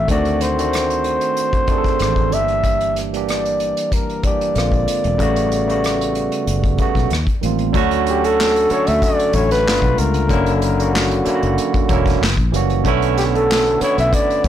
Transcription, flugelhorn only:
0, 0, Header, 1, 2, 480
1, 0, Start_track
1, 0, Key_signature, 2, "major"
1, 0, Tempo, 638298
1, 64, Time_signature, 4, 2, 24, 8
1, 10889, End_track
2, 0, Start_track
2, 0, Title_t, "Flugelhorn"
2, 0, Program_c, 0, 56
2, 81, Note_on_c, 0, 74, 93
2, 316, Note_on_c, 0, 72, 98
2, 327, Note_off_c, 0, 74, 0
2, 1756, Note_on_c, 0, 76, 95
2, 1767, Note_off_c, 0, 72, 0
2, 2269, Note_off_c, 0, 76, 0
2, 2473, Note_on_c, 0, 74, 75
2, 2958, Note_on_c, 0, 70, 69
2, 2969, Note_off_c, 0, 74, 0
2, 3191, Note_on_c, 0, 74, 80
2, 3202, Note_off_c, 0, 70, 0
2, 5347, Note_off_c, 0, 74, 0
2, 6084, Note_on_c, 0, 67, 89
2, 6207, Note_on_c, 0, 69, 104
2, 6218, Note_off_c, 0, 67, 0
2, 6560, Note_on_c, 0, 73, 104
2, 6571, Note_off_c, 0, 69, 0
2, 6683, Note_on_c, 0, 76, 106
2, 6695, Note_off_c, 0, 73, 0
2, 6798, Note_on_c, 0, 74, 93
2, 6809, Note_off_c, 0, 76, 0
2, 7036, Note_on_c, 0, 73, 97
2, 7047, Note_off_c, 0, 74, 0
2, 7153, Note_off_c, 0, 73, 0
2, 7158, Note_on_c, 0, 71, 105
2, 7511, Note_on_c, 0, 70, 91
2, 7522, Note_off_c, 0, 71, 0
2, 7935, Note_off_c, 0, 70, 0
2, 7939, Note_on_c, 0, 69, 53
2, 7989, Note_on_c, 0, 70, 84
2, 8000, Note_off_c, 0, 69, 0
2, 8229, Note_on_c, 0, 66, 76
2, 8240, Note_off_c, 0, 70, 0
2, 8707, Note_off_c, 0, 66, 0
2, 9909, Note_on_c, 0, 67, 81
2, 9965, Note_off_c, 0, 67, 0
2, 10043, Note_on_c, 0, 69, 98
2, 10392, Note_on_c, 0, 73, 106
2, 10404, Note_off_c, 0, 69, 0
2, 10515, Note_off_c, 0, 73, 0
2, 10524, Note_on_c, 0, 76, 103
2, 10635, Note_on_c, 0, 74, 97
2, 10647, Note_off_c, 0, 76, 0
2, 10882, Note_off_c, 0, 74, 0
2, 10889, End_track
0, 0, End_of_file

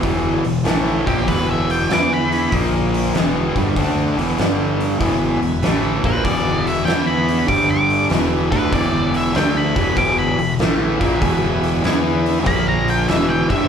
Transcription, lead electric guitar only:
0, 0, Header, 1, 2, 480
1, 0, Start_track
1, 0, Tempo, 621762
1, 24, Time_signature, 4, 2, 24, 8
1, 10562, End_track
2, 0, Start_track
2, 0, Title_t, "Lead electric guitar"
2, 0, Program_c, 0, 29
2, 824, Note_on_c, 0, 67, 89
2, 980, Note_off_c, 0, 67, 0
2, 989, Note_on_c, 0, 71, 81
2, 1142, Note_off_c, 0, 71, 0
2, 1164, Note_on_c, 0, 76, 83
2, 1310, Note_off_c, 0, 76, 0
2, 1318, Note_on_c, 0, 79, 83
2, 1467, Note_off_c, 0, 79, 0
2, 1492, Note_on_c, 0, 86, 90
2, 1634, Note_off_c, 0, 86, 0
2, 1650, Note_on_c, 0, 83, 81
2, 1948, Note_off_c, 0, 83, 0
2, 4675, Note_on_c, 0, 71, 104
2, 4822, Note_off_c, 0, 71, 0
2, 4825, Note_on_c, 0, 74, 97
2, 5134, Note_off_c, 0, 74, 0
2, 5154, Note_on_c, 0, 76, 90
2, 5287, Note_off_c, 0, 76, 0
2, 5290, Note_on_c, 0, 79, 89
2, 5451, Note_off_c, 0, 79, 0
2, 5458, Note_on_c, 0, 83, 89
2, 5771, Note_off_c, 0, 83, 0
2, 5776, Note_on_c, 0, 86, 83
2, 5934, Note_off_c, 0, 86, 0
2, 5950, Note_on_c, 0, 86, 88
2, 6205, Note_off_c, 0, 86, 0
2, 6575, Note_on_c, 0, 71, 95
2, 6733, Note_off_c, 0, 71, 0
2, 6744, Note_on_c, 0, 74, 100
2, 7053, Note_off_c, 0, 74, 0
2, 7079, Note_on_c, 0, 76, 90
2, 7226, Note_off_c, 0, 76, 0
2, 7226, Note_on_c, 0, 79, 86
2, 7379, Note_off_c, 0, 79, 0
2, 7390, Note_on_c, 0, 83, 93
2, 7696, Note_off_c, 0, 83, 0
2, 7701, Note_on_c, 0, 86, 80
2, 7856, Note_off_c, 0, 86, 0
2, 7864, Note_on_c, 0, 83, 94
2, 8121, Note_off_c, 0, 83, 0
2, 9627, Note_on_c, 0, 83, 90
2, 9779, Note_off_c, 0, 83, 0
2, 9793, Note_on_c, 0, 82, 81
2, 9943, Note_off_c, 0, 82, 0
2, 9957, Note_on_c, 0, 79, 78
2, 10105, Note_off_c, 0, 79, 0
2, 10108, Note_on_c, 0, 76, 95
2, 10257, Note_on_c, 0, 79, 81
2, 10260, Note_off_c, 0, 76, 0
2, 10414, Note_off_c, 0, 79, 0
2, 10417, Note_on_c, 0, 76, 75
2, 10562, Note_off_c, 0, 76, 0
2, 10562, End_track
0, 0, End_of_file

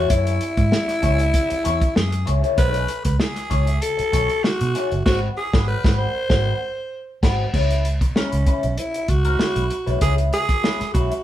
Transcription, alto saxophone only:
0, 0, Header, 1, 2, 480
1, 0, Start_track
1, 0, Tempo, 619835
1, 81, Time_signature, 4, 2, 24, 8
1, 8700, End_track
2, 0, Start_track
2, 0, Title_t, "Alto saxophone"
2, 0, Program_c, 0, 65
2, 0, Note_on_c, 0, 66, 103
2, 81, Note_on_c, 0, 64, 116
2, 93, Note_off_c, 0, 66, 0
2, 1519, Note_on_c, 0, 68, 92
2, 1531, Note_off_c, 0, 64, 0
2, 1791, Note_off_c, 0, 68, 0
2, 1999, Note_on_c, 0, 71, 116
2, 2340, Note_off_c, 0, 71, 0
2, 2368, Note_on_c, 0, 71, 91
2, 2471, Note_off_c, 0, 71, 0
2, 2477, Note_on_c, 0, 68, 100
2, 2960, Note_on_c, 0, 69, 111
2, 2971, Note_off_c, 0, 68, 0
2, 3438, Note_on_c, 0, 66, 107
2, 3449, Note_off_c, 0, 69, 0
2, 3912, Note_off_c, 0, 66, 0
2, 3917, Note_on_c, 0, 66, 114
2, 4025, Note_off_c, 0, 66, 0
2, 4161, Note_on_c, 0, 68, 102
2, 4382, Note_off_c, 0, 68, 0
2, 4396, Note_on_c, 0, 71, 110
2, 4632, Note_on_c, 0, 72, 106
2, 4644, Note_off_c, 0, 71, 0
2, 5594, Note_off_c, 0, 72, 0
2, 6318, Note_on_c, 0, 61, 81
2, 6798, Note_on_c, 0, 64, 94
2, 6809, Note_off_c, 0, 61, 0
2, 7039, Note_on_c, 0, 66, 107
2, 7051, Note_off_c, 0, 64, 0
2, 7753, Note_off_c, 0, 66, 0
2, 7758, Note_on_c, 0, 68, 112
2, 7866, Note_off_c, 0, 68, 0
2, 8003, Note_on_c, 0, 68, 120
2, 8451, Note_off_c, 0, 68, 0
2, 8471, Note_on_c, 0, 66, 87
2, 8700, Note_off_c, 0, 66, 0
2, 8700, End_track
0, 0, End_of_file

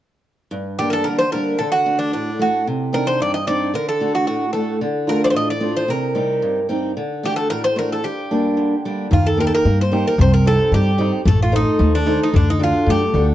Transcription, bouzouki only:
0, 0, Header, 1, 2, 480
1, 0, Start_track
1, 0, Tempo, 537153
1, 461, Time_signature, 2, 2, 24, 8
1, 11925, End_track
2, 0, Start_track
2, 0, Title_t, "Bouzouki"
2, 0, Program_c, 0, 25
2, 702, Note_on_c, 0, 67, 86
2, 785, Note_off_c, 0, 67, 0
2, 805, Note_on_c, 0, 70, 66
2, 828, Note_off_c, 0, 70, 0
2, 829, Note_on_c, 0, 69, 82
2, 930, Note_on_c, 0, 70, 76
2, 937, Note_off_c, 0, 69, 0
2, 1047, Note_off_c, 0, 70, 0
2, 1059, Note_on_c, 0, 72, 83
2, 1171, Note_off_c, 0, 72, 0
2, 1181, Note_on_c, 0, 70, 78
2, 1417, Note_on_c, 0, 69, 83
2, 1428, Note_off_c, 0, 70, 0
2, 1530, Note_off_c, 0, 69, 0
2, 1535, Note_on_c, 0, 66, 86
2, 1761, Note_off_c, 0, 66, 0
2, 1776, Note_on_c, 0, 62, 68
2, 1890, Note_off_c, 0, 62, 0
2, 1907, Note_on_c, 0, 62, 61
2, 2127, Note_off_c, 0, 62, 0
2, 2159, Note_on_c, 0, 66, 66
2, 2374, Note_off_c, 0, 66, 0
2, 2628, Note_on_c, 0, 70, 89
2, 2736, Note_off_c, 0, 70, 0
2, 2743, Note_on_c, 0, 72, 85
2, 2865, Note_off_c, 0, 72, 0
2, 2876, Note_on_c, 0, 74, 79
2, 2980, Note_off_c, 0, 74, 0
2, 2984, Note_on_c, 0, 75, 77
2, 3094, Note_off_c, 0, 75, 0
2, 3104, Note_on_c, 0, 74, 81
2, 3326, Note_off_c, 0, 74, 0
2, 3352, Note_on_c, 0, 70, 79
2, 3469, Note_off_c, 0, 70, 0
2, 3472, Note_on_c, 0, 69, 78
2, 3703, Note_off_c, 0, 69, 0
2, 3706, Note_on_c, 0, 66, 75
2, 3806, Note_off_c, 0, 66, 0
2, 3816, Note_on_c, 0, 66, 69
2, 4043, Note_off_c, 0, 66, 0
2, 4047, Note_on_c, 0, 69, 62
2, 4277, Note_off_c, 0, 69, 0
2, 4549, Note_on_c, 0, 70, 81
2, 4657, Note_off_c, 0, 70, 0
2, 4685, Note_on_c, 0, 72, 82
2, 4694, Note_on_c, 0, 74, 67
2, 4702, Note_off_c, 0, 72, 0
2, 4723, Note_off_c, 0, 74, 0
2, 4739, Note_on_c, 0, 72, 75
2, 4787, Note_off_c, 0, 72, 0
2, 4793, Note_on_c, 0, 75, 73
2, 4899, Note_off_c, 0, 75, 0
2, 4917, Note_on_c, 0, 74, 77
2, 5133, Note_off_c, 0, 74, 0
2, 5152, Note_on_c, 0, 72, 73
2, 5259, Note_off_c, 0, 72, 0
2, 5273, Note_on_c, 0, 70, 72
2, 5953, Note_off_c, 0, 70, 0
2, 6483, Note_on_c, 0, 67, 81
2, 6575, Note_off_c, 0, 67, 0
2, 6579, Note_on_c, 0, 69, 84
2, 6692, Note_off_c, 0, 69, 0
2, 6703, Note_on_c, 0, 70, 84
2, 6815, Note_off_c, 0, 70, 0
2, 6828, Note_on_c, 0, 72, 91
2, 6938, Note_off_c, 0, 72, 0
2, 6958, Note_on_c, 0, 70, 76
2, 7074, Note_off_c, 0, 70, 0
2, 7081, Note_on_c, 0, 69, 67
2, 7184, Note_off_c, 0, 69, 0
2, 7186, Note_on_c, 0, 67, 66
2, 7869, Note_off_c, 0, 67, 0
2, 8159, Note_on_c, 0, 65, 67
2, 8275, Note_off_c, 0, 65, 0
2, 8279, Note_on_c, 0, 69, 74
2, 8395, Note_off_c, 0, 69, 0
2, 8404, Note_on_c, 0, 70, 86
2, 8452, Note_off_c, 0, 70, 0
2, 8461, Note_on_c, 0, 69, 76
2, 8516, Note_off_c, 0, 69, 0
2, 8530, Note_on_c, 0, 70, 91
2, 8738, Note_off_c, 0, 70, 0
2, 8768, Note_on_c, 0, 72, 75
2, 9000, Note_off_c, 0, 72, 0
2, 9003, Note_on_c, 0, 70, 73
2, 9105, Note_off_c, 0, 70, 0
2, 9125, Note_on_c, 0, 72, 83
2, 9232, Note_off_c, 0, 72, 0
2, 9236, Note_on_c, 0, 70, 77
2, 9341, Note_off_c, 0, 70, 0
2, 9359, Note_on_c, 0, 69, 91
2, 9594, Note_off_c, 0, 69, 0
2, 9597, Note_on_c, 0, 67, 77
2, 9924, Note_off_c, 0, 67, 0
2, 10077, Note_on_c, 0, 69, 81
2, 10181, Note_off_c, 0, 69, 0
2, 10209, Note_on_c, 0, 65, 78
2, 10307, Note_off_c, 0, 65, 0
2, 10328, Note_on_c, 0, 63, 92
2, 10649, Note_off_c, 0, 63, 0
2, 10679, Note_on_c, 0, 62, 79
2, 10893, Note_off_c, 0, 62, 0
2, 10933, Note_on_c, 0, 63, 75
2, 11029, Note_off_c, 0, 63, 0
2, 11046, Note_on_c, 0, 62, 79
2, 11156, Note_off_c, 0, 62, 0
2, 11171, Note_on_c, 0, 63, 79
2, 11267, Note_off_c, 0, 63, 0
2, 11290, Note_on_c, 0, 65, 82
2, 11520, Note_off_c, 0, 65, 0
2, 11528, Note_on_c, 0, 67, 85
2, 11848, Note_off_c, 0, 67, 0
2, 11925, End_track
0, 0, End_of_file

